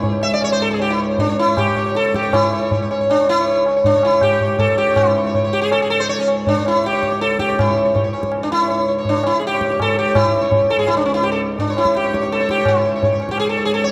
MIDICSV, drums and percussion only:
0, 0, Header, 1, 2, 480
1, 0, Start_track
1, 0, Tempo, 381194
1, 2941, Time_signature, 7, 2, 24, 8
1, 4372, Tempo, 374065
1, 8692, Tempo, 366300
1, 13972, Tempo, 358637
1, 18052, End_track
2, 0, Start_track
2, 0, Title_t, "Tabla"
2, 40, Note_on_c, 9, 63, 85
2, 40, Note_on_c, 9, 64, 76
2, 166, Note_off_c, 9, 63, 0
2, 166, Note_off_c, 9, 64, 0
2, 272, Note_on_c, 9, 60, 62
2, 398, Note_off_c, 9, 60, 0
2, 518, Note_on_c, 9, 60, 81
2, 644, Note_off_c, 9, 60, 0
2, 1004, Note_on_c, 9, 63, 81
2, 1130, Note_off_c, 9, 63, 0
2, 1491, Note_on_c, 9, 63, 80
2, 1491, Note_on_c, 9, 64, 71
2, 1617, Note_off_c, 9, 63, 0
2, 1617, Note_off_c, 9, 64, 0
2, 1977, Note_on_c, 9, 60, 79
2, 1977, Note_on_c, 9, 64, 73
2, 2103, Note_off_c, 9, 60, 0
2, 2103, Note_off_c, 9, 64, 0
2, 2216, Note_on_c, 9, 64, 61
2, 2342, Note_off_c, 9, 64, 0
2, 2456, Note_on_c, 9, 62, 77
2, 2581, Note_off_c, 9, 62, 0
2, 2582, Note_on_c, 9, 62, 70
2, 2700, Note_on_c, 9, 37, 67
2, 2708, Note_off_c, 9, 62, 0
2, 2813, Note_on_c, 9, 62, 64
2, 2826, Note_off_c, 9, 37, 0
2, 2935, Note_on_c, 9, 60, 108
2, 2935, Note_on_c, 9, 64, 97
2, 2939, Note_off_c, 9, 62, 0
2, 3061, Note_off_c, 9, 60, 0
2, 3061, Note_off_c, 9, 64, 0
2, 3415, Note_on_c, 9, 63, 89
2, 3415, Note_on_c, 9, 64, 80
2, 3541, Note_off_c, 9, 63, 0
2, 3541, Note_off_c, 9, 64, 0
2, 3664, Note_on_c, 9, 60, 66
2, 3790, Note_off_c, 9, 60, 0
2, 3901, Note_on_c, 9, 60, 81
2, 4026, Note_off_c, 9, 60, 0
2, 4128, Note_on_c, 9, 60, 66
2, 4254, Note_off_c, 9, 60, 0
2, 4372, Note_on_c, 9, 63, 83
2, 4500, Note_off_c, 9, 63, 0
2, 4612, Note_on_c, 9, 60, 59
2, 4740, Note_off_c, 9, 60, 0
2, 4848, Note_on_c, 9, 63, 82
2, 4848, Note_on_c, 9, 64, 76
2, 4977, Note_off_c, 9, 63, 0
2, 4977, Note_off_c, 9, 64, 0
2, 5088, Note_on_c, 9, 60, 68
2, 5217, Note_off_c, 9, 60, 0
2, 5321, Note_on_c, 9, 60, 80
2, 5321, Note_on_c, 9, 64, 78
2, 5449, Note_off_c, 9, 60, 0
2, 5449, Note_off_c, 9, 64, 0
2, 5567, Note_on_c, 9, 64, 58
2, 5695, Note_off_c, 9, 64, 0
2, 5803, Note_on_c, 9, 60, 82
2, 5803, Note_on_c, 9, 64, 76
2, 5932, Note_off_c, 9, 60, 0
2, 5932, Note_off_c, 9, 64, 0
2, 6044, Note_on_c, 9, 62, 65
2, 6173, Note_off_c, 9, 62, 0
2, 6283, Note_on_c, 9, 60, 116
2, 6283, Note_on_c, 9, 64, 102
2, 6412, Note_off_c, 9, 60, 0
2, 6412, Note_off_c, 9, 64, 0
2, 6775, Note_on_c, 9, 63, 86
2, 6775, Note_on_c, 9, 64, 74
2, 6903, Note_off_c, 9, 63, 0
2, 6903, Note_off_c, 9, 64, 0
2, 7250, Note_on_c, 9, 60, 86
2, 7378, Note_off_c, 9, 60, 0
2, 7729, Note_on_c, 9, 63, 82
2, 7857, Note_off_c, 9, 63, 0
2, 7973, Note_on_c, 9, 60, 63
2, 8102, Note_off_c, 9, 60, 0
2, 8215, Note_on_c, 9, 63, 85
2, 8215, Note_on_c, 9, 64, 73
2, 8343, Note_off_c, 9, 63, 0
2, 8343, Note_off_c, 9, 64, 0
2, 8460, Note_on_c, 9, 60, 65
2, 8589, Note_off_c, 9, 60, 0
2, 8692, Note_on_c, 9, 62, 84
2, 8811, Note_off_c, 9, 62, 0
2, 8811, Note_on_c, 9, 62, 64
2, 8940, Note_on_c, 9, 37, 65
2, 8942, Note_off_c, 9, 62, 0
2, 9061, Note_on_c, 9, 62, 67
2, 9071, Note_off_c, 9, 37, 0
2, 9185, Note_off_c, 9, 62, 0
2, 9185, Note_on_c, 9, 62, 83
2, 9308, Note_off_c, 9, 62, 0
2, 9308, Note_on_c, 9, 62, 63
2, 9418, Note_on_c, 9, 37, 66
2, 9439, Note_off_c, 9, 62, 0
2, 9548, Note_on_c, 9, 62, 67
2, 9549, Note_off_c, 9, 37, 0
2, 9678, Note_on_c, 9, 60, 115
2, 9678, Note_on_c, 9, 64, 96
2, 9679, Note_off_c, 9, 62, 0
2, 9809, Note_off_c, 9, 60, 0
2, 9809, Note_off_c, 9, 64, 0
2, 10154, Note_on_c, 9, 63, 87
2, 10154, Note_on_c, 9, 64, 77
2, 10285, Note_off_c, 9, 63, 0
2, 10285, Note_off_c, 9, 64, 0
2, 10396, Note_on_c, 9, 60, 62
2, 10516, Note_on_c, 9, 37, 66
2, 10527, Note_off_c, 9, 60, 0
2, 10628, Note_on_c, 9, 60, 84
2, 10647, Note_off_c, 9, 37, 0
2, 10759, Note_off_c, 9, 60, 0
2, 11106, Note_on_c, 9, 63, 86
2, 11237, Note_off_c, 9, 63, 0
2, 11587, Note_on_c, 9, 63, 74
2, 11587, Note_on_c, 9, 64, 70
2, 11718, Note_off_c, 9, 63, 0
2, 11718, Note_off_c, 9, 64, 0
2, 11831, Note_on_c, 9, 60, 67
2, 11962, Note_off_c, 9, 60, 0
2, 12067, Note_on_c, 9, 62, 78
2, 12198, Note_off_c, 9, 62, 0
2, 12198, Note_on_c, 9, 62, 67
2, 12325, Note_on_c, 9, 37, 65
2, 12329, Note_off_c, 9, 62, 0
2, 12441, Note_on_c, 9, 62, 67
2, 12456, Note_off_c, 9, 37, 0
2, 12567, Note_on_c, 9, 60, 77
2, 12567, Note_on_c, 9, 64, 70
2, 12572, Note_off_c, 9, 62, 0
2, 12698, Note_off_c, 9, 60, 0
2, 12698, Note_off_c, 9, 64, 0
2, 12809, Note_on_c, 9, 62, 61
2, 12940, Note_off_c, 9, 62, 0
2, 13035, Note_on_c, 9, 60, 110
2, 13035, Note_on_c, 9, 64, 98
2, 13166, Note_off_c, 9, 60, 0
2, 13166, Note_off_c, 9, 64, 0
2, 13508, Note_on_c, 9, 63, 88
2, 13508, Note_on_c, 9, 64, 83
2, 13639, Note_off_c, 9, 63, 0
2, 13639, Note_off_c, 9, 64, 0
2, 13753, Note_on_c, 9, 60, 61
2, 13884, Note_off_c, 9, 60, 0
2, 13972, Note_on_c, 9, 60, 85
2, 14106, Note_off_c, 9, 60, 0
2, 14453, Note_on_c, 9, 63, 79
2, 14586, Note_off_c, 9, 63, 0
2, 14933, Note_on_c, 9, 63, 79
2, 14933, Note_on_c, 9, 64, 68
2, 15067, Note_off_c, 9, 63, 0
2, 15067, Note_off_c, 9, 64, 0
2, 15177, Note_on_c, 9, 60, 70
2, 15290, Note_on_c, 9, 37, 67
2, 15311, Note_off_c, 9, 60, 0
2, 15415, Note_on_c, 9, 62, 86
2, 15424, Note_off_c, 9, 37, 0
2, 15545, Note_off_c, 9, 62, 0
2, 15545, Note_on_c, 9, 62, 67
2, 15678, Note_off_c, 9, 62, 0
2, 15678, Note_on_c, 9, 37, 65
2, 15799, Note_on_c, 9, 62, 71
2, 15812, Note_off_c, 9, 37, 0
2, 15921, Note_off_c, 9, 62, 0
2, 15921, Note_on_c, 9, 62, 79
2, 16026, Note_off_c, 9, 62, 0
2, 16026, Note_on_c, 9, 62, 68
2, 16142, Note_on_c, 9, 37, 66
2, 16160, Note_off_c, 9, 62, 0
2, 16263, Note_on_c, 9, 62, 65
2, 16276, Note_off_c, 9, 37, 0
2, 16363, Note_on_c, 9, 60, 107
2, 16363, Note_on_c, 9, 64, 100
2, 16397, Note_off_c, 9, 62, 0
2, 16497, Note_off_c, 9, 60, 0
2, 16497, Note_off_c, 9, 64, 0
2, 16862, Note_on_c, 9, 63, 87
2, 16862, Note_on_c, 9, 64, 73
2, 16996, Note_off_c, 9, 63, 0
2, 16996, Note_off_c, 9, 64, 0
2, 17093, Note_on_c, 9, 60, 67
2, 17212, Note_on_c, 9, 37, 66
2, 17227, Note_off_c, 9, 60, 0
2, 17328, Note_on_c, 9, 60, 86
2, 17345, Note_off_c, 9, 37, 0
2, 17462, Note_off_c, 9, 60, 0
2, 17806, Note_on_c, 9, 63, 88
2, 17940, Note_off_c, 9, 63, 0
2, 18052, End_track
0, 0, End_of_file